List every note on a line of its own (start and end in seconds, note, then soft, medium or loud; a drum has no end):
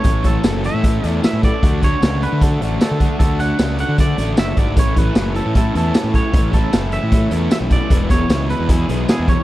0.00 0.22 A2 medium
0.00 0.26 C#5 medium
0.00 closed hi-hat medium
0.04 0.36 A1 medium
0.04 0.23 E3 medium
0.04 0.24 A3 medium
0.04 0.24 C#4 medium
0.04 0.25 A4 loud
0.04 kick medium
0.23 0.42 A2 medium
0.23 0.43 E3 medium
0.23 0.44 A3 medium
0.23 0.44 C#4 medium
0.23 0.45 A4 medium
0.23 0.62 A4 medium
0.23 kick medium
0.23 closed hi-hat medium
0.44 0.68 F#1 medium
0.44 0.62 A2 medium
0.44 0.63 E3 medium
0.44 0.64 A3 medium
0.44 0.64 C#4 medium
0.44 0.65 A4 medium
0.44 snare loud
0.44 closed hi-hat medium
0.44 tambourine medium
0.64 0.82 A2 medium
0.64 0.82 E3 medium
0.64 0.84 A3 medium
0.64 0.83 C#4 medium
0.64 0.85 A4 medium
0.64 1.08 E5 medium
0.64 closed hi-hat medium
0.74 0.98 A2 medium
0.83 1.01 A2 medium
0.83 1.02 E3 medium
0.83 1.03 A3 medium
0.83 1.03 C#4 medium
0.83 1.04 A4 medium
0.83 kick medium
0.83 closed hi-hat medium
1.02 1.20 E2 medium
1.02 1.21 A2 medium
1.02 1.22 E3 medium
1.02 1.23 A3 medium
1.02 1.23 C#4 medium
1.02 1.24 A4 medium
1.02 closed hi-hat medium
1.08 1.20 D5 medium
1.22 1.41 A2 medium
1.22 1.42 E3 medium
1.22 1.43 A3 medium
1.22 1.43 C#4 medium
1.22 1.44 A4 medium
1.22 1.42 E5 medium
1.22 snare medium
1.22 closed hi-hat medium
1.22 tambourine medium
1.33 1.49 A2 medium
1.43 1.61 A2 medium
1.43 1.61 E3 medium
1.43 1.63 A3 medium
1.43 1.62 C#4 medium
1.43 1.64 A4 medium
1.43 1.84 D5 medium
1.43 kick medium
1.43 closed hi-hat medium
1.62 1.94 D2 medium
1.62 1.81 D3 medium
1.62 1.82 A3 medium
1.62 1.83 D4 medium
1.62 1.83 F#4 medium
1.62 kick medium
1.62 closed hi-hat medium
1.82 2.01 D3 medium
1.82 2.02 A3 medium
1.82 2.02 D4 medium
1.82 2.03 F#4 medium
1.82 2.24 C#5 medium
1.82 kick medium
1.82 closed hi-hat medium
2.01 2.26 C#2 medium
2.01 2.21 D3 medium
2.01 2.22 A3 medium
2.01 2.22 D4 medium
2.01 2.23 F#4 medium
2.01 snare loud
2.01 closed hi-hat medium
2.01 tambourine loud
2.21 2.41 D3 medium
2.21 2.42 A3 medium
2.21 2.42 D4 medium
2.21 2.42 F#4 medium
2.21 2.42 B4 medium
2.21 closed hi-hat medium
2.32 2.56 D3 medium
2.41 2.60 D3 medium
2.41 2.61 A3 medium
2.41 2.61 D4 medium
2.41 2.62 F#4 medium
2.41 2.80 A4 medium
2.41 kick medium
2.41 closed hi-hat medium
2.61 2.77 A1 medium
2.61 2.79 D3 medium
2.61 2.81 A3 loud
2.61 2.80 D4 medium
2.61 2.81 F#4 loud
2.61 closed hi-hat medium
2.80 2.99 D3 medium
2.80 3.00 A3 medium
2.80 3.00 D4 medium
2.80 3.00 F#4 medium
2.80 3.18 A4 medium
2.80 snare medium
2.80 closed hi-hat medium
2.80 tambourine medium
2.91 3.07 D3 medium
3.00 3.19 D3 medium
3.00 3.20 A3 medium
3.00 3.20 D4 medium
3.00 3.20 F#4 medium
3.00 kick medium
3.00 closed hi-hat medium
3.19 3.52 D2 medium
3.19 3.38 D3 medium
3.19 3.40 A3 medium
3.19 3.39 D4 medium
3.19 3.40 F#4 loud
3.19 3.40 A4 medium
3.19 kick loud
3.19 closed hi-hat medium
3.39 3.58 D3 medium
3.39 3.59 A3 medium
3.39 3.59 D4 medium
3.39 3.60 F#4 medium
3.39 3.79 F#5 medium
3.39 closed hi-hat medium
3.59 3.83 C#2 medium
3.59 3.77 D3 medium
3.59 3.79 A3 medium
3.59 3.79 D4 medium
3.59 3.79 F#4 medium
3.59 snare loud
3.59 closed hi-hat medium
3.59 tambourine loud
3.78 3.97 D3 medium
3.78 3.98 A3 medium
3.78 3.98 D4 medium
3.78 3.99 F#4 medium
3.78 4.00 F#5 medium
3.78 closed hi-hat medium
3.89 4.12 D3 medium
3.98 4.16 D3 medium
3.98 4.18 A3 medium
3.98 4.17 D4 medium
3.98 4.18 F#4 medium
3.98 4.36 D5 medium
3.98 kick medium
3.98 closed hi-hat medium
4.17 4.34 A1 medium
4.17 4.35 D3 medium
4.17 4.37 A3 medium
4.17 4.37 D4 loud
4.17 4.37 F#4 medium
4.17 closed hi-hat medium
4.37 4.56 F#1 medium
4.37 4.55 D3 medium
4.37 4.57 A3 medium
4.37 4.57 D4 medium
4.37 4.57 F#4 medium
4.37 4.58 E5 medium
4.37 snare loud
4.37 closed hi-hat medium
4.37 tambourine medium
4.57 4.75 G#1 medium
4.57 4.75 D3 medium
4.57 4.77 A3 medium
4.57 4.76 D4 medium
4.57 4.76 F#4 medium
4.57 4.77 D5 medium
4.57 kick medium
4.57 closed hi-hat medium
4.76 5.08 A1 medium
4.76 4.95 A2 medium
4.76 4.96 E3 medium
4.76 4.96 A3 medium
4.76 4.97 C#4 medium
4.76 4.97 E4 medium
4.76 4.98 C#5 medium
4.76 kick loud
4.76 closed hi-hat medium
4.96 5.15 A2 medium
4.96 5.16 E3 medium
4.96 5.16 A3 medium
4.96 5.17 C#4 medium
4.96 5.17 E4 medium
4.96 5.36 B4 medium
4.96 kick medium
4.96 closed hi-hat soft
5.15 5.40 F#1 medium
5.15 5.34 A2 medium
5.15 5.35 E3 medium
5.15 5.35 A3 medium
5.15 5.36 C#4 medium
5.15 5.37 E4 medium
5.15 snare loud
5.15 closed hi-hat medium
5.15 tambourine loud
5.35 5.54 A2 medium
5.35 5.55 E3 medium
5.35 5.55 A3 medium
5.35 5.56 C#4 medium
5.35 5.57 E4 loud
5.35 5.54 A4 medium
5.35 closed hi-hat medium
5.46 5.69 A2 medium
5.55 5.73 A2 medium
5.55 5.75 E3 medium
5.55 5.75 A3 medium
5.55 5.75 C#4 medium
5.55 5.77 E4 medium
5.55 5.76 A4 medium
5.55 kick medium
5.55 closed hi-hat medium
5.75 5.91 E2 medium
5.75 5.93 A2 medium
5.75 5.94 E3 medium
5.75 5.94 A3 medium
5.75 5.95 C#4 medium
5.75 5.96 E4 medium
5.75 6.17 A4 medium
5.75 closed hi-hat medium
5.94 6.12 A2 medium
5.94 6.13 E3 medium
5.94 6.13 A3 medium
5.94 6.14 C#4 medium
5.94 6.15 E4 medium
5.94 snare loud
5.94 closed hi-hat medium
5.94 tambourine medium
6.04 6.20 A2 medium
6.13 6.31 A2 medium
6.13 6.32 E3 medium
6.13 6.33 A3 medium
6.13 6.33 C#4 medium
6.13 6.34 E4 medium
6.13 6.55 C#5 medium
6.13 kick medium
6.13 closed hi-hat medium
6.32 6.65 A1 medium
6.32 6.51 A2 medium
6.32 6.52 E3 medium
6.32 6.52 A3 medium
6.32 6.53 C#4 loud
6.32 6.54 E4 medium
6.32 kick loud
6.32 closed hi-hat medium
6.52 6.71 A2 medium
6.52 6.72 E3 medium
6.52 6.72 A3 medium
6.52 6.73 C#4 medium
6.52 6.74 E4 medium
6.52 6.94 A4 medium
6.52 kick medium
6.52 closed hi-hat soft
6.72 6.97 F#1 medium
6.72 6.90 A2 medium
6.72 6.92 E3 medium
6.72 6.91 A3 medium
6.72 6.92 C#4 medium
6.72 6.93 E4 medium
6.72 snare loud
6.72 closed hi-hat medium
6.72 tambourine loud
6.92 7.11 A2 medium
6.92 7.12 E3 loud
6.92 7.12 A3 loud
6.92 7.13 C#4 loud
6.92 7.14 E4 loud
6.92 7.48 E5 medium
6.92 closed hi-hat medium
7.03 7.26 A2 medium
7.12 7.30 A2 medium
7.12 7.31 E3 medium
7.12 7.31 A3 medium
7.12 7.32 C#4 medium
7.12 7.33 E4 medium
7.12 kick medium
7.12 closed hi-hat medium
7.31 7.47 E2 medium
7.31 7.49 A2 medium
7.31 7.51 E3 medium
7.31 7.51 A3 loud
7.31 7.51 C#4 medium
7.31 7.52 E4 loud
7.31 closed hi-hat medium
7.50 7.69 A2 medium
7.50 7.71 E3 medium
7.50 7.71 A3 medium
7.50 7.71 C#4 medium
7.50 7.73 E4 medium
7.50 7.57 E5 medium
7.50 snare medium
7.50 closed hi-hat medium
7.50 tambourine loud
7.60 7.77 B1 medium
7.70 7.89 A2 medium
7.70 7.91 E3 medium
7.70 7.90 A3 medium
7.70 7.90 C#4 medium
7.70 7.92 E4 medium
7.70 8.10 D5 medium
7.70 kick medium
7.70 closed hi-hat medium
7.90 8.22 E1 medium
7.90 8.09 E2 medium
7.90 8.09 B2 loud
7.90 8.10 E3 medium
7.90 8.11 G#3 loud
7.90 8.12 B3 loud
7.90 8.12 E4 loud
7.90 kick medium
7.90 closed hi-hat medium
8.10 8.29 E2 medium
8.10 8.29 B2 medium
8.10 8.30 E3 medium
8.10 8.31 G#3 medium
8.10 8.31 B3 medium
8.10 8.32 E4 medium
8.10 8.47 C#5 medium
8.10 kick medium
8.10 closed hi-hat medium
8.29 8.53 C#2 medium
8.29 8.48 E2 medium
8.29 8.48 B2 medium
8.29 8.49 E3 medium
8.29 8.50 G#3 medium
8.29 8.50 B3 medium
8.29 8.51 E4 medium
8.29 snare medium
8.29 closed hi-hat medium
8.29 tambourine loud
8.49 8.67 E2 medium
8.49 8.67 B2 medium
8.49 8.69 E3 medium
8.49 8.69 G#3 loud
8.49 8.69 B3 loud
8.49 8.71 E4 loud
8.49 8.71 B4 medium
8.49 closed hi-hat medium
8.59 8.83 E2 medium
8.68 8.87 E2 medium
8.68 8.88 B2 medium
8.68 8.89 E3 medium
8.68 8.89 G#3 medium
8.68 8.89 B3 medium
8.68 8.90 E4 medium
8.68 9.08 G#4 medium
8.68 kick medium
8.68 closed hi-hat medium
8.88 9.05 B1 medium
8.88 9.07 E2 medium
8.88 9.07 B2 medium
8.88 9.09 E3 medium
8.88 9.09 G#3 loud
8.88 9.09 B3 loud
8.88 9.10 E4 loud
8.88 closed hi-hat medium
9.08 9.27 E2 medium
9.08 9.27 B2 medium
9.08 9.28 E3 medium
9.08 9.28 G#3 medium
9.08 9.29 B3 medium
9.08 9.30 E4 medium
9.08 9.29 G#4 medium
9.08 snare loud
9.08 closed hi-hat medium
9.08 tambourine loud
9.19 9.34 E2 medium
9.28 9.43 E2 medium
9.28 9.43 B2 medium
9.28 9.43 E3 medium
9.28 9.43 G#3 medium
9.28 9.43 B3 medium
9.28 9.43 E4 medium
9.28 9.43 C#5 medium
9.28 kick medium
9.28 closed hi-hat medium